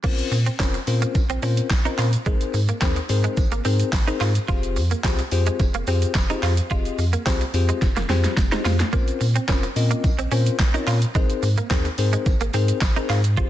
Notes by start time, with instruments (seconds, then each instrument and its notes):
0.04 sub bass A#1, clean electric guitar A#3, tine electric piano C4 C#4 F4 A#4 C5, kick, crash, shaker
0.19 closed hi-hat, shaker
0.31 sub bass A#2, muted clean electric guitar stroke, open hi-hat, tambourine, shaker
0.46 clean electric guitar C4, closed hi-hat, shaker
0.59 sub bass F1, tine electric piano C4 C#4 F4 A#4 C5, clean electric guitar C#4, kick, snare, clap, tambourine, shaker
0.74 muted clean electric guitar stroke, closed hi-hat, shaker
0.87 sub bass A#2, tine electric piano C4 C#4 F4 A#4 C5, open hi-hat, shaker
1.02 clean electric guitar A#3, closed hi-hat, shaker
1.15 sub bass A#1, muted clean electric guitar stroke, kick, tambourine, shaker
1.29 sub bass A#1, clean electric guitar C4, closed hi-hat, shaker
1.42 sub bass A#2, tine electric piano C4 C#4 F4 A#4 C5, clean electric guitar C#4, open hi-hat, tambourine, shaker
1.57 closed hi-hat, shaker
1.70 sub bass A#1, muted clean electric guitar stroke, kick, snare, clap, tambourine, shaker
1.85 tine electric piano C4 C#4 F4 A#4 C5, clean electric guitar D#4, closed hi-hat, shaker
1.98 sub bass A#2, clean electric guitar F4, clap, open hi-hat, tambourine, shaker
2.13 closed hi-hat, shaker
2.26 sub bass G#1, clean electric guitar G#3, tine electric piano C4 D#4 G#4 A#4 C5, kick, shaker
2.41 closed hi-hat, shaker
2.54 sub bass G#2, muted clean electric guitar stroke, open hi-hat, tambourine, shaker
2.69 clean electric guitar A#3, closed hi-hat, shaker
2.81 sub bass D#2, tine electric piano C4 D#4 G#4 A#4 C5, clean electric guitar C4, kick, snare, clap, tambourine, shaker
2.96 muted clean electric guitar stroke, closed hi-hat, shaker
3.09 sub bass G#2, tine electric piano C4 D#4 G#4 A#4 C5, open hi-hat, shaker
3.24 clean electric guitar G#3, closed hi-hat, shaker
3.37 sub bass G#1, muted clean electric guitar stroke, kick, tambourine, shaker
3.52 sub bass G#1, clean electric guitar A#3, closed hi-hat, shaker
3.65 sub bass G#2, tine electric piano C4 D#4 G#4 A#4 C5, clean electric guitar C4, open hi-hat, tambourine, shaker
3.80 closed hi-hat, shaker
3.93 sub bass G#1, muted clean electric guitar stroke, kick, snare, clap, tambourine, shaker
4.07 tine electric piano C4 D#4 G#4 A#4 C5, clean electric guitar D#4, closed hi-hat, shaker
4.21 sub bass G#2, clean electric guitar F4, clap, open hi-hat, tambourine, shaker
4.35 closed hi-hat, shaker
4.48 sub bass F1, tine electric piano C4 F4 G4 G#4 C5, clean electric guitar F4, kick, tambourine, shaker
4.63 closed hi-hat, shaker
4.76 sub bass F2, muted clean electric guitar stroke, open hi-hat, tambourine, shaker
4.91 clean electric guitar A#3, closed hi-hat, shaker
5.04 sub bass C2, tine electric piano C4 F4 G4 G#4 C5, clean electric guitar C4, kick, snare, clap, tambourine, shaker
5.19 muted clean electric guitar stroke, closed hi-hat, shaker
5.31 sub bass F2, tine electric piano C4 F4 G4 G#4 C5, open hi-hat, shaker
5.46 clean electric guitar G#3, closed hi-hat, shaker
5.59 sub bass F1, muted clean electric guitar stroke, kick, tambourine, shaker
5.74 sub bass F1, clean electric guitar A#3, closed hi-hat, shaker
5.87 sub bass F2, tine electric piano C4 F4 G4 G#4 C5, clean electric guitar C4, open hi-hat, tambourine, shaker
6.02 closed hi-hat, shaker
6.15 sub bass F1, muted clean electric guitar stroke, kick, snare, clap, tambourine, shaker
6.30 tine electric piano C4 F4 G4 G#4 C5, clean electric guitar D#4, closed hi-hat, shaker
6.43 sub bass F2, clean electric guitar F4, clap, open hi-hat, tambourine, shaker
6.57 closed hi-hat, shaker
6.70 sub bass F1, tine electric piano C4 F4 G4 G#4 D#5, clean electric guitar F4, kick, tambourine, shaker
6.85 closed hi-hat, shaker
6.98 sub bass F2, muted clean electric guitar stroke, open hi-hat, tambourine, shaker
7.13 clean electric guitar A#3, closed hi-hat, shaker
7.26 sub bass C2, tine electric piano C4 F4 G4 G#4 C5, clean electric guitar C4, kick, snare, clap, tambourine, shaker
7.41 muted clean electric guitar stroke, closed hi-hat, shaker
7.54 sub bass F2, tine electric piano C4 F4 G4 G#4 C5, open hi-hat, tambourine, shaker
7.69 clean electric guitar G#3, closed hi-hat, shaker
7.82 sub bass F1, muted clean electric guitar stroke, kick, snare, tambourine, shaker
7.96 sub bass F1, clean electric guitar A#3, snare, closed hi-hat, shaker
8.09 sub bass F2, tine electric piano C4 F4 G4 G#4 C5, clean electric guitar C4, snare, open hi-hat, tambourine, shaker
8.24 snare, closed hi-hat, shaker
8.37 sub bass F1, muted clean electric guitar stroke, kick, snare, tambourine, shaker
8.52 tine electric piano C4 F4 G4 G#4 C5, clean electric guitar D#4, snare, closed hi-hat, shaker
8.65 sub bass F2, clean electric guitar F4, snare, open hi-hat, tambourine, shaker
8.80 snare, closed hi-hat, shaker
8.93 sub bass A#1, clean electric guitar A#3, tine electric piano C4 C#4 F4 A#4 C5, kick, tambourine, shaker
9.08 closed hi-hat, shaker
9.21 sub bass A#2, muted clean electric guitar stroke, open hi-hat, tambourine, shaker
9.36 clean electric guitar C4, closed hi-hat, shaker
9.48 sub bass F1, tine electric piano C4 C#4 F4 A#4 C5, clean electric guitar C#4, kick, snare, clap, tambourine, shaker
9.63 muted clean electric guitar stroke, closed hi-hat, shaker
9.76 sub bass A#2, tine electric piano C4 C#4 F4 A#4 D#5, open hi-hat, shaker
9.91 clean electric guitar A#3, closed hi-hat, shaker
10.04 sub bass A#1, muted clean electric guitar stroke, kick, tambourine, shaker
10.18 sub bass A#1, clean electric guitar C4, closed hi-hat, shaker
10.31 sub bass A#2, tine electric piano C4 C#4 F4 A#4 C5, clean electric guitar C#4, open hi-hat, tambourine, shaker
10.46 closed hi-hat, shaker
10.59 sub bass A#1, muted clean electric guitar stroke, kick, snare, clap, tambourine, shaker
10.74 tine electric piano C4 C#4 F4 A#4 C#5, clean electric guitar D#4, closed hi-hat, shaker
10.87 sub bass A#2, clean electric guitar F4, clap, open hi-hat, tambourine, shaker
11.02 closed hi-hat, shaker
11.15 sub bass G#1, clean electric guitar G#3, tine electric piano C4 D#4 G#4 A#4 C5, kick, tambourine, shaker
11.30 closed hi-hat, shaker
11.43 sub bass G#2, muted clean electric guitar stroke, open hi-hat, tambourine, shaker
11.58 clean electric guitar A#3, closed hi-hat, shaker
11.70 sub bass D#2, tine electric piano C4 D#4 G#4 A#4 C5, clean electric guitar C4, kick, snare, clap, tambourine, shaker
11.85 muted clean electric guitar stroke, closed hi-hat, shaker
11.98 sub bass G#2, tine electric piano C4 D#4 G#4 A#4 C5, open hi-hat, shaker
12.13 clean electric guitar G#3, closed hi-hat, shaker
12.26 sub bass G#1, muted clean electric guitar stroke, kick, tambourine, shaker
12.41 sub bass G#1, clean electric guitar A#3, closed hi-hat, shaker
12.53 sub bass G#2, tine electric piano C4 D#4 G#4 A#4 C5, clean electric guitar C4, open hi-hat, tambourine, shaker
12.68 closed hi-hat, shaker
12.81 sub bass G#1, muted clean electric guitar stroke, kick, snare, clap, tambourine, shaker
12.96 tine electric piano C4 D#4 G#4 A#4 C5, clean electric guitar D#4, closed hi-hat, shaker
13.09 sub bass G#2, clean electric guitar F4, clap, open hi-hat, tambourine, shaker
13.24 closed hi-hat, shaker
13.37 sub bass F1, tine electric piano C4 F4 G4 G#4 C5, clean electric guitar F4, kick, shaker